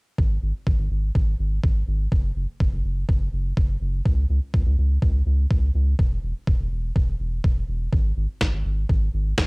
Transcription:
0.18 0.38 G#1 medium
0.18 kick loud
0.42 0.52 G#1 medium
0.67 0.77 G#1 medium
0.67 kick loud
0.79 0.89 G#1 medium
0.91 1.11 G#1 medium
1.15 1.35 G#1 loud
1.15 kick loud
1.39 1.59 G#1 medium
1.64 1.83 G#1 medium
1.64 kick loud
1.88 2.07 G#1 medium
2.12 2.32 F#1 medium
2.12 kick loud
2.36 2.46 F#1 medium
2.60 2.70 F#1 medium
2.60 kick loud
2.72 2.82 F#1 medium
2.84 3.04 F#1 medium
3.09 3.29 F#1 medium
3.09 kick loud
3.33 3.53 F#1 medium
3.57 3.77 F#1 medium
3.57 kick loud
3.81 4.01 F#1 medium
4.05 4.25 C#2 medium
4.05 kick loud
4.30 4.40 C#2 medium
4.54 4.64 C#2 medium
4.54 kick loud
4.66 4.76 C#2 medium
4.78 4.98 C#2 medium
5.02 5.22 C#2 loud
5.02 kick loud
5.26 5.46 C#2 medium
5.51 5.70 C#2 medium
5.51 kick loud
5.75 5.95 C#2 medium
5.99 6.19 E1 medium
5.99 kick loud
6.23 6.33 E1 medium
6.47 6.57 E1 medium
6.47 kick loud
6.60 6.69 E1 medium
6.72 6.91 E1 medium
6.96 7.16 E1 medium
6.96 kick loud
7.20 7.40 E1 medium
7.44 7.64 E1 medium
7.44 kick loud
7.68 7.88 E1 medium
7.93 8.12 G#1 medium
7.93 kick loud
8.17 8.27 G#1 medium
8.41 8.51 G#1 medium
8.41 kick loud
8.41 snare loud
8.53 8.63 G#1 medium
8.65 8.85 G#1 medium
8.89 9.09 G#1 loud
8.89 kick loud
9.14 9.33 G#1 medium
9.38 9.47 G#1 medium
9.38 kick loud
9.38 snare loud

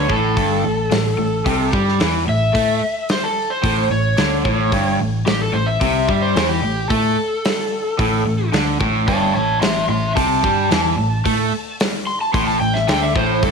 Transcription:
0.09 0.35 A1 medium
0.09 0.36 A2 medium
0.09 1.70 A4 medium
0.09 kick loud
0.37 0.62 G1 medium
0.37 0.63 G2 medium
0.37 kick medium
0.37 open hi-hat soft
0.63 0.89 A1 medium
0.63 0.85 A2 medium
0.91 1.17 A1 medium
0.91 1.13 A2 medium
0.91 snare loud
0.91 open hi-hat medium
1.18 1.44 A1 medium
1.18 1.40 A2 medium
1.46 1.71 C2 medium
1.46 1.72 C3 loud
1.46 kick loud
1.46 open hi-hat medium
1.71 1.98 G2 medium
1.71 1.99 G3 loud
1.71 kick loud
1.88 snare soft
1.99 2.26 E2 medium
1.99 2.26 E3 loud
1.99 snare loud
1.99 open hi-hat medium
2.27 2.53 A1 medium
2.27 2.49 A2 medium
2.27 3.08 E5 loud
2.53 2.80 A2 medium
2.53 2.80 A3 medium
2.53 kick medium
2.53 open hi-hat medium
3.09 3.23 C5 medium
3.09 snare loud
3.09 open hi-hat medium
3.24 3.50 A4 medium
3.50 3.90 C5 medium
3.63 3.89 A1 medium
3.63 3.90 A2 loud
3.63 kick loud
3.63 open hi-hat medium
3.91 4.16 A1 medium
3.91 4.13 A2 medium
3.91 4.97 C#5 medium
4.17 4.43 D2 medium
4.17 4.44 D3 loud
4.17 snare loud
4.17 open hi-hat medium
4.45 4.71 A1 medium
4.45 4.72 A2 loud
4.45 kick loud
4.72 4.98 G1 medium
4.72 4.99 G2 medium
4.72 kick medium
4.72 open hi-hat soft
4.99 5.25 A1 medium
4.99 5.21 A2 medium
5.26 5.52 A1 medium
5.26 5.48 A2 medium
5.26 5.40 G4 medium
5.26 snare loud
5.26 open hi-hat medium
5.42 5.54 A4 medium
5.53 5.79 A1 medium
5.53 5.75 A2 medium
5.53 5.67 C5 medium
5.66 6.20 E5 medium
5.81 6.07 C2 medium
5.81 6.08 C3 loud
5.81 kick loud
5.81 open hi-hat medium
6.08 6.34 G2 medium
6.08 6.35 G3 medium
6.08 kick loud
6.22 6.48 C5 medium
6.35 6.61 E2 medium
6.35 6.62 E3 medium
6.35 snare loud
6.35 open hi-hat medium
6.49 6.89 G4 medium
6.62 6.88 A1 medium
6.62 6.85 A2 medium
6.90 7.16 A2 medium
6.90 7.17 A3 loud
6.90 8.49 A4 medium
6.90 kick medium
6.90 open hi-hat medium
7.45 snare loud
7.45 open hi-hat medium
7.99 8.24 A1 medium
7.99 8.25 A2 medium
7.99 kick loud
7.99 open hi-hat medium
8.26 8.51 A1 medium
8.26 8.48 A2 medium
8.53 8.78 D2 medium
8.53 8.80 D3 medium
8.53 snare loud
8.53 open hi-hat medium
8.80 9.06 A1 medium
8.80 9.07 A2 medium
8.80 kick loud
9.07 9.33 G1 medium
9.07 9.34 G2 medium
9.07 9.34 C#5 medium
9.07 9.35 A5 medium
9.07 kick loud
9.07 open hi-hat soft
9.34 9.60 A1 medium
9.34 9.56 A2 medium
9.34 9.60 C#5 medium
9.34 9.61 A5 medium
9.61 9.87 A1 medium
9.61 9.84 A2 medium
9.61 9.87 E5 medium
9.61 9.88 C6 medium
9.61 snare loud
9.61 open hi-hat soft
9.89 10.14 A1 medium
9.89 10.11 A2 medium
9.89 10.14 E5 medium
9.89 10.15 C6 medium
10.16 10.42 C2 medium
10.16 10.42 C3 medium
10.16 11.75 A5 loud
10.16 kick loud
10.16 open hi-hat medium
10.43 10.69 G2 medium
10.43 10.70 G3 loud
10.43 kick loud
10.69 10.96 E2 medium
10.69 10.97 E3 loud
10.69 snare loud
10.69 open hi-hat medium
10.97 11.23 A1 medium
10.97 11.20 A2 medium
11.25 11.51 A2 medium
11.25 11.52 A3 loud
11.25 kick medium
11.25 open hi-hat medium
11.80 snare loud
11.80 open hi-hat medium
12.07 12.20 C6 medium
12.21 12.33 A5 medium
12.34 12.59 A1 medium
12.34 12.60 A2 loud
12.34 12.47 C6 loud
12.34 kick loud
12.34 open hi-hat medium
12.47 12.60 A5 loud
12.60 12.86 A1 medium
12.60 12.83 A2 medium
12.60 12.74 G5 medium
12.74 12.87 E5 medium
12.74 snare soft
12.88 13.14 D2 medium
12.88 13.15 D3 loud
12.88 13.01 G5 medium
12.88 snare loud
12.88 open hi-hat medium
13.02 13.15 E5 medium
13.15 13.41 A1 medium
13.15 13.42 A2 loud
13.15 13.42 C5 loud
13.15 kick loud
13.43 13.51 G1 medium
13.43 13.51 G2 loud
13.43 13.51 A4 loud
13.43 kick loud
13.43 open hi-hat medium

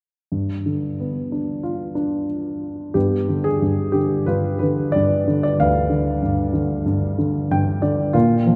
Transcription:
0.32 2.91 G2 soft
0.66 1.91 D3 soft
1.00 2.25 B3 soft
1.32 1.94 D4 soft
1.63 2.92 F4 soft
1.95 2.92 D4 soft
2.94 3.60 G2 soft
2.94 4.24 B3 soft
2.94 3.46 G4 medium
3.29 3.92 D3 soft
3.44 3.96 G#4 medium
3.62 4.26 G2 soft
3.92 4.61 D3 soft
3.92 4.24 G4 medium
4.26 4.94 G2 soft
4.26 5.54 F4 soft
4.26 4.58 B4 medium
4.59 5.26 D3 soft
4.59 4.94 B4 medium
4.92 6.20 G2 soft
4.92 5.42 D5 medium
5.28 5.88 D3 soft
5.43 5.60 D5 medium
5.59 8.11 D2 soft
5.59 6.84 B4 soft
5.59 6.83 F5 medium
5.90 6.52 D3 soft
6.23 6.84 G2 soft
6.54 7.17 D3 soft
6.86 7.50 G2 soft
7.18 7.81 D3 soft
7.51 8.13 G2 soft
7.51 7.81 G5 medium
7.82 8.14 D3 soft
7.82 8.12 D5 soft
8.13 8.56 A#2 soft
8.13 8.56 A#3 soft
8.13 8.53 F4 medium
8.47 8.56 F3 soft

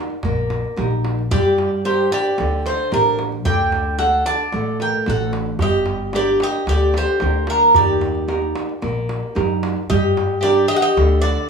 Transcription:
0.00 0.13 D#4 soft
0.00 0.14 G4 soft
0.00 0.14 A#4 medium
0.10 darbuka tek soft
0.23 0.62 A#1 medium
0.23 0.76 A#3 medium
0.23 darbuka tek medium
0.23 darbuka dum medium
0.37 darbuka tek soft
0.50 darbuka tek medium
0.64 darbuka tek soft
0.76 1.34 A#1 loud
0.76 1.20 D#4 medium
0.76 1.20 G4 soft
0.76 1.21 A#4 medium
0.76 darbuka tek medium
0.91 darbuka tek soft
1.05 darbuka tek medium
1.19 darbuka tek soft
1.31 2.07 G2 medium
1.31 1.83 G3 medium
1.31 1.81 G4 medium
1.31 1.81 D5 loud
1.31 darbuka dum loud
1.58 darbuka tek medium
1.84 2.28 D4 soft
1.84 2.28 G4 soft
1.84 2.10 G4 medium
1.84 2.28 A#4 medium
1.84 2.12 C5 medium
1.84 darbuka tek medium
2.12 2.63 G4 medium
2.12 2.66 D5 loud
2.12 darbuka tek medium
2.38 2.77 D2 medium
2.38 2.90 D3 medium
2.38 darbuka tek medium
2.66 2.92 D#4 medium
2.66 2.93 C5 medium
2.66 darbuka tek medium
2.92 3.46 A1 loud
2.92 3.35 D4 medium
2.92 3.18 D4 medium
2.92 3.35 G4 soft
2.92 3.35 A#4 medium
2.92 3.18 A#4 medium
2.92 darbuka tek medium
3.06 darbuka tek soft
3.19 darbuka tek medium
3.32 darbuka tek soft
3.45 4.21 D2 loud
3.45 3.98 D3 medium
3.45 3.96 D5 medium
3.45 3.95 G5 medium
3.45 darbuka dum medium
3.72 darbuka tek medium
3.98 4.42 D4 medium
3.98 4.42 F#4 soft
3.98 4.24 A4 medium
3.98 4.42 A4 medium
3.98 4.26 F#5 medium
3.98 darbuka tek medium
4.26 4.76 D5 medium
4.26 4.76 A5 loud
4.26 darbuka tek medium
4.53 4.91 A1 medium
4.53 5.05 A3 medium
4.53 darbuka tek medium
4.80 5.05 A#4 medium
4.80 5.08 G5 medium
4.80 darbuka tek medium
5.06 5.59 A1 loud
5.06 5.50 D4 medium
5.06 5.50 F#4 soft
5.06 5.50 A4 medium
5.06 5.32 A4 medium
5.06 5.33 F#5 medium
5.06 darbuka tek medium
5.20 darbuka tek soft
5.33 darbuka tek medium
5.46 darbuka tek soft
5.59 6.35 G1 loud
5.59 6.13 G3 medium
5.59 6.10 G4 medium
5.59 6.11 D#5 loud
5.59 darbuka dum loud
5.86 darbuka tek medium
6.13 6.57 D4 medium
6.13 6.57 G4 soft
6.13 6.39 G4 medium
6.13 6.57 A#4 medium
6.13 6.40 D5 loud
6.13 darbuka tek medium
6.40 6.66 G4 medium
6.40 6.69 D#5 loud
6.40 darbuka tek medium
6.67 7.05 D2 medium
6.67 7.20 D3 medium
6.67 6.93 G4 medium
6.67 6.96 D5 medium
6.67 darbuka tek medium
6.94 7.45 G4 medium
6.94 7.49 C5 medium
6.94 darbuka tek medium
7.20 7.76 D2 loud
7.20 7.64 D4 medium
7.20 7.64 G4 medium
7.20 7.64 A#4 medium
7.20 darbuka tek medium
7.34 darbuka tek soft
7.47 7.74 D4 medium
7.47 7.74 A#4 medium
7.47 darbuka tek medium
7.61 darbuka tek soft
7.75 8.51 D#2 loud
7.75 8.27 D#3 medium
7.75 9.33 G4 medium
7.75 9.32 D5 medium
7.75 darbuka dum loud
8.01 darbuka tek medium
8.15 darbuka tek soft
8.28 8.71 D#4 soft
8.28 8.71 G4 soft
8.28 8.71 A#4 medium
8.28 darbuka tek medium
8.42 darbuka tek soft
8.56 darbuka tek medium
8.69 darbuka tek soft
8.82 9.20 A#1 medium
8.82 9.34 A#3 medium
8.82 darbuka tek medium
9.09 darbuka tek medium
9.35 9.74 F#2 loud
9.35 9.79 D#4 medium
9.35 9.79 G4 soft
9.35 9.78 A#4 medium
9.35 darbuka tek medium
9.49 darbuka tek soft
9.63 darbuka tek medium
9.76 darbuka tek soft
9.90 10.65 G2 loud
9.90 10.42 G3 medium
9.90 10.40 G4 medium
9.90 10.42 D#5 medium
9.90 darbuka dum medium
10.17 darbuka tek medium
10.41 10.86 D4 medium
10.41 10.67 G4 medium
10.41 10.86 G4 medium
10.41 10.87 A#4 medium
10.41 10.68 D5 loud
10.41 darbuka tek medium
10.68 10.75 G4 medium
10.68 10.76 D#5 loud
10.75 10.82 A4 medium
10.75 10.82 F#5 loud
10.81 11.19 G4 medium
10.81 11.20 D#5 loud
10.97 11.35 D2 medium
10.97 11.49 D3 medium
10.97 darbuka tek medium
11.21 11.48 F#4 medium
11.21 11.48 D5 medium
11.21 darbuka tek medium

